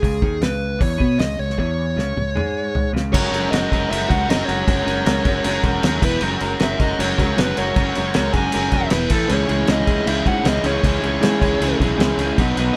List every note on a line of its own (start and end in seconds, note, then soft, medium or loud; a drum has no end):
0.00 0.21 C#2 medium
0.00 0.21 C#3 loud
0.00 0.42 G#4 medium
0.00 kick medium
0.04 open hi-hat soft
0.22 0.40 D#2 medium
0.22 0.41 D#3 medium
0.22 kick loud
0.41 0.78 C#2 medium
0.41 0.79 C#3 medium
0.41 0.82 B4 medium
0.41 snare loud
0.41 open hi-hat soft
0.79 0.98 E2 medium
0.79 0.98 E3 medium
0.79 1.19 C#5 medium
0.79 kick loud
0.79 open hi-hat medium
0.98 1.18 B2 medium
0.98 1.18 B3 loud
0.98 kick medium
1.18 1.38 C#2 medium
1.18 1.37 C#3 medium
1.18 1.39 D#5 medium
1.18 snare loud
1.18 open hi-hat medium
1.38 1.57 C#2 medium
1.38 1.54 C#3 medium
1.38 1.58 C#5 medium
1.50 snare soft
1.58 1.95 E2 medium
1.58 1.96 E3 medium
1.58 2.90 C#5 medium
1.58 kick medium
1.96 2.15 C#2 medium
1.96 2.16 C#3 medium
1.96 snare medium
2.16 2.34 C#2 medium
2.16 2.32 C#3 medium
2.16 mid tom medium
2.35 2.89 G#2 medium
2.35 2.93 G#3 medium
2.35 mid tom medium
2.75 floor tom medium
2.93 3.11 C#2 medium
2.93 3.12 C#3 medium
2.93 snare medium
3.12 3.27 F#1 loud
3.12 3.32 F#3 loud
3.12 3.33 G#3 loud
3.12 3.47 C#4 medium
3.12 3.33 C#4 loud
3.12 3.33 F#4 loud
3.12 3.34 A#4 loud
3.12 3.53 C#5 medium
3.12 kick loud
3.12 crash loud
3.12 crash medium
3.32 3.46 F#1 medium
3.32 3.52 F#3 medium
3.32 3.53 G#3 medium
3.32 3.53 C#4 medium
3.32 3.53 F#4 medium
3.32 3.54 A#4 medium
3.32 crash medium
3.48 3.85 D#4 medium
3.48 3.91 D#5 medium
3.52 3.65 F#1 medium
3.52 3.71 F#3 loud
3.52 3.71 G#3 medium
3.52 3.71 C#4 medium
3.52 3.72 F#4 loud
3.52 3.72 A#4 loud
3.52 snare loud
3.52 crash medium
3.72 3.85 F#1 loud
3.72 3.89 F#3 medium
3.72 3.89 G#3 medium
3.72 3.89 C#4 medium
3.72 3.90 F#4 medium
3.72 3.90 A#4 medium
3.72 kick medium
3.72 crash medium
3.89 4.04 F#1 medium
3.89 4.09 F#3 medium
3.89 4.09 G#3 medium
3.89 4.10 C#4 medium
3.89 4.07 E4 loud
3.89 4.10 F#4 medium
3.89 4.11 A#4 loud
3.89 4.09 E5 loud
3.89 crash medium
4.08 4.23 C#2 loud
4.08 4.28 F#3 loud
4.08 4.29 G#3 loud
4.08 4.29 C#4 loud
4.08 4.27 F#4 medium
4.08 4.30 F#4 medium
4.08 4.30 A#4 loud
4.08 4.30 F#5 loud
4.08 kick medium
4.08 crash medium
4.27 4.42 F#1 loud
4.27 4.46 F#3 loud
4.27 4.46 G#3 medium
4.27 4.47 C#4 loud
4.27 4.44 D#4 medium
4.27 4.47 F#4 loud
4.27 4.47 A#4 loud
4.27 4.45 D#5 loud
4.27 snare loud
4.27 crash medium
4.44 4.66 F#3 medium
4.44 4.65 G#3 medium
4.44 5.62 C#4 medium
4.44 4.66 C#4 medium
4.44 5.62 C#5 medium
4.48 4.62 F#1 medium
4.48 4.66 F#4 loud
4.48 4.66 A#4 medium
4.48 crash medium
4.67 4.81 F#1 loud
4.67 4.84 F#3 medium
4.67 4.85 G#3 loud
4.67 4.85 C#4 loud
4.67 4.86 F#4 loud
4.67 4.86 A#4 loud
4.67 kick loud
4.67 crash medium
4.86 5.00 F#1 medium
4.86 5.04 F#3 medium
4.86 5.05 G#3 medium
4.86 5.05 C#4 medium
4.86 5.05 F#4 medium
4.86 5.05 A#4 medium
4.86 crash medium
5.05 5.19 C#2 medium
5.05 5.24 F#3 medium
5.05 5.23 G#3 loud
5.05 5.24 C#4 loud
5.05 5.25 F#4 loud
5.05 5.25 A#4 loud
5.05 snare loud
5.05 crash medium
5.25 5.39 F#1 loud
5.25 5.42 F#3 medium
5.25 5.43 G#3 medium
5.25 5.43 C#4 medium
5.25 5.43 F#4 medium
5.25 5.44 A#4 loud
5.25 kick medium
5.25 crash medium
5.44 5.58 F#1 medium
5.44 5.62 F#3 medium
5.44 5.61 G#3 medium
5.44 5.61 C#4 medium
5.44 5.62 F#4 medium
5.44 5.63 A#4 medium
5.44 crash medium
5.63 5.77 E1 loud
5.63 5.80 F#3 medium
5.63 5.81 G#3 medium
5.63 5.81 C#4 medium
5.63 5.81 F#4 loud
5.63 5.81 A#4 loud
5.63 kick medium
5.63 crash medium
5.82 5.97 D#2 loud
5.82 6.00 F#3 medium
5.82 6.01 G#3 medium
5.82 6.01 C#4 loud
5.82 6.01 F#4 loud
5.82 6.01 A#4 loud
5.82 snare loud
5.82 crash medium
6.00 6.16 E1 medium
6.00 6.19 E3 medium
6.00 6.20 B3 loud
6.00 6.20 E4 loud
6.00 6.21 B4 loud
6.00 kick loud
6.00 crash medium
6.20 6.35 F#1 loud
6.20 6.40 F#3 loud
6.20 6.40 G#3 loud
6.20 6.40 C#4 medium
6.20 6.41 F#4 loud
6.20 6.41 A#4 loud
6.20 crash medium
6.40 6.54 F#1 medium
6.40 6.58 F#3 medium
6.40 6.58 G#3 medium
6.40 6.59 C#4 medium
6.40 6.60 F#4 loud
6.40 6.60 A#4 medium
6.40 crash medium
6.59 6.74 F#1 medium
6.59 6.78 F#3 loud
6.59 6.79 G#3 loud
6.59 6.79 C#4 medium
6.59 6.79 F#4 loud
6.59 6.79 A#4 loud
6.59 snare loud
6.59 crash medium
6.63 6.83 E4 medium
6.63 6.80 E5 medium
6.79 6.93 F#1 medium
6.79 6.97 F#3 medium
6.79 6.97 G#3 medium
6.79 6.98 C#4 medium
6.79 6.98 F#4 medium
6.79 6.99 A#4 loud
6.79 7.00 D#5 medium
6.79 kick medium
6.79 crash medium
6.83 7.02 D#4 medium
6.98 7.12 F#1 medium
6.98 7.16 F#3 medium
6.98 7.16 G#3 medium
6.98 7.17 C#4 medium
6.98 7.18 F#4 medium
6.98 7.18 A#4 medium
6.98 7.19 C#5 medium
6.98 crash medium
7.02 7.20 C#4 medium
7.17 7.32 C#2 loud
7.17 7.36 F#3 medium
7.17 7.36 G#3 medium
7.17 7.36 C#4 medium
7.17 7.37 F#4 loud
7.17 7.37 A#4 loud
7.17 kick medium
7.17 crash medium
7.21 7.39 C#4 medium
7.21 7.40 C#5 medium
7.37 7.52 F#1 loud
7.37 7.55 F#3 medium
7.37 7.56 G#3 medium
7.37 7.57 B3 medium
7.37 7.56 C#4 loud
7.37 7.57 F#4 loud
7.37 7.57 A#4 loud
7.37 7.58 B4 medium
7.37 snare loud
7.37 crash medium
7.57 7.71 F#1 medium
7.57 7.74 F#3 medium
7.57 7.75 G#3 medium
7.57 7.75 C#4 medium
7.57 8.34 C#4 medium
7.57 7.76 F#4 loud
7.57 7.76 A#4 medium
7.57 8.36 C#5 loud
7.57 crash medium
7.75 7.89 F#1 loud
7.75 7.95 F#3 medium
7.75 7.95 G#3 medium
7.75 7.95 C#4 loud
7.75 7.96 F#4 loud
7.75 7.96 A#4 loud
7.75 kick loud
7.75 crash medium
7.95 8.10 F#1 medium
7.95 8.14 F#3 medium
7.95 8.13 G#3 medium
7.95 8.15 C#4 medium
7.95 8.15 F#4 medium
7.95 8.14 A#4 medium
7.95 crash medium
8.14 8.29 C#2 medium
8.14 8.32 F#3 medium
8.14 8.32 G#3 loud
8.14 8.33 C#4 medium
8.14 8.33 F#4 loud
8.14 8.33 A#4 loud
8.14 snare loud
8.14 crash medium
8.33 8.47 F#1 loud
8.33 8.53 F#3 medium
8.33 8.53 G#3 medium
8.33 8.54 C#4 medium
8.33 8.53 F#4 medium
8.33 8.87 G#4 medium
8.33 8.54 A#4 loud
8.33 8.87 G#5 loud
8.33 kick medium
8.33 crash medium
8.52 8.68 F#1 medium
8.52 8.71 F#3 medium
8.52 8.71 G#3 medium
8.52 8.72 C#4 loud
8.52 8.72 F#4 loud
8.52 8.72 A#4 medium
8.52 crash medium
8.72 8.86 E1 medium
8.72 8.90 F#3 medium
8.72 8.90 G#3 loud
8.72 8.91 C#4 loud
8.72 8.90 F#4 loud
8.72 8.91 A#4 loud
8.72 kick medium
8.72 crash medium
8.90 9.05 E1 loud
8.90 9.10 E3 loud
8.90 9.09 B3 medium
8.90 9.10 E4 loud
8.90 9.09 B4 loud
8.90 snare loud
8.90 crash medium
9.10 9.23 A1 medium
9.10 9.28 A2 medium
9.10 9.29 E3 loud
9.10 9.28 A3 loud
9.10 9.29 E4 loud
9.10 9.29 A4 loud
9.10 kick medium
9.10 crash medium
9.28 9.43 C#2 loud
9.28 9.46 C#3 medium
9.28 9.47 E3 medium
9.28 9.47 G#3 medium
9.28 9.48 C#4 loud
9.28 9.65 C#4 medium
9.28 9.48 E4 medium
9.28 9.48 G#4 medium
9.28 9.69 C#5 medium
9.28 crash medium
9.47 9.63 C#2 medium
9.47 9.67 C#3 medium
9.47 9.67 E3 medium
9.47 9.67 G#3 medium
9.47 9.67 C#4 medium
9.47 9.68 E4 medium
9.47 9.68 G#4 medium
9.47 crash medium
9.67 9.82 C#2 medium
9.67 9.86 C#3 medium
9.67 9.87 E3 loud
9.67 9.86 G#3 medium
9.67 9.87 C#4 loud
9.67 10.04 D#4 medium
9.67 9.87 E4 loud
9.67 9.88 G#4 loud
9.67 10.07 D#5 medium
9.67 snare loud
9.67 crash medium
9.86 10.01 C#2 loud
9.86 10.05 C#3 medium
9.86 10.06 E3 medium
9.86 10.05 G#3 medium
9.86 10.06 C#4 medium
9.86 10.06 E4 medium
9.86 10.06 G#4 medium
9.86 kick medium
9.86 crash medium
10.06 10.20 C#2 medium
10.06 10.24 C#3 medium
10.06 10.25 E3 medium
10.06 10.24 G#3 medium
10.06 10.24 C#4 medium
10.06 10.25 E4 medium
10.06 10.26 E4 medium
10.06 10.25 G#4 loud
10.06 10.27 E5 loud
10.06 crash medium
10.25 10.39 G#2 medium
10.25 10.42 C#3 loud
10.25 10.43 E3 medium
10.25 10.42 G#3 medium
10.25 10.42 C#4 loud
10.25 10.42 E4 loud
10.25 10.44 F#4 medium
10.25 10.43 G#4 loud
10.25 10.48 F#5 loud
10.25 kick medium
10.25 crash medium
10.43 10.58 C#2 loud
10.43 10.61 C#3 loud
10.43 10.65 E3 loud
10.43 10.62 G#3 loud
10.43 10.63 C#4 loud
10.43 10.63 E4 medium
10.43 10.63 G#4 loud
10.43 snare loud
10.43 crash medium
10.48 10.66 D#4 medium
10.48 10.66 D#5 medium
10.63 10.77 C#2 medium
10.63 10.80 C#3 medium
10.63 10.82 E3 medium
10.63 10.81 G#3 medium
10.63 10.81 C#4 loud
10.63 11.76 C#4 medium
10.63 10.82 E4 medium
10.63 10.82 G#4 loud
10.63 11.76 C#5 medium
10.63 crash medium
10.82 10.97 C#2 loud
10.82 10.99 C#3 loud
10.82 11.02 E3 medium
10.82 11.00 G#3 medium
10.82 11.01 C#4 loud
10.82 11.01 E4 medium
10.82 11.01 G#4 loud
10.82 kick loud
10.82 crash medium
11.01 11.16 C#2 medium
11.01 11.19 C#3 medium
11.01 11.20 E3 medium
11.01 11.19 G#3 medium
11.01 11.19 C#4 medium
11.01 11.20 E4 medium
11.01 11.20 G#4 medium
11.01 crash medium
11.20 11.35 G#2 medium
11.20 11.39 C#3 medium
11.20 11.40 E3 medium
11.20 11.40 G#3 loud
11.20 11.40 C#4 medium
11.20 11.40 E4 medium
11.20 11.41 G#4 loud
11.20 snare loud
11.20 crash medium
11.41 11.55 C#2 medium
11.41 11.59 C#3 medium
11.41 11.60 E3 medium
11.41 11.60 G#3 medium
11.41 11.60 C#4 medium
11.41 11.61 E4 medium
11.41 11.60 G#4 loud
11.41 kick medium
11.41 crash medium
11.60 11.74 C#2 medium
11.60 11.78 C#3 medium
11.60 11.80 E3 loud
11.60 11.78 G#3 medium
11.60 11.79 C#4 medium
11.60 11.78 E4 medium
11.60 11.79 G#4 loud
11.60 crash medium
11.79 11.93 B1 loud
11.79 11.96 C#3 medium
11.79 11.99 E3 medium
11.79 11.97 G#3 loud
11.79 11.97 C#4 loud
11.79 11.97 E4 loud
11.79 11.98 G#4 loud
11.79 kick medium
11.79 crash medium
11.97 12.12 C#2 loud
11.97 12.17 C#3 loud
11.97 12.19 E3 loud
11.97 12.18 G#3 loud
11.97 12.18 C#4 loud
11.97 12.18 E4 loud
11.97 12.18 G#4 loud
11.97 snare loud
11.97 crash medium
12.18 12.31 C#2 loud
12.18 12.36 C#3 medium
12.18 12.37 E3 medium
12.18 12.36 G#3 loud
12.18 12.36 C#4 medium
12.18 12.37 E4 loud
12.18 12.37 G#4 medium
12.18 crash medium
12.38 12.51 B1 loud
12.38 12.56 B2 loud
12.38 12.57 D#3 medium
12.38 12.57 F#3 medium
12.38 12.58 B3 loud
12.38 12.58 D#4 loud
12.38 12.56 F#4 loud
12.38 12.58 B4 loud
12.38 kick loud
12.38 crash medium
12.56 12.70 B1 medium
12.56 12.75 B2 medium
12.56 12.75 D#3 medium
12.56 12.75 F#3 medium
12.56 12.75 B3 medium
12.56 12.76 D#4 medium
12.56 12.74 F#4 medium
12.56 12.76 B4 medium
12.56 crash medium
12.73 12.77 D#4 medium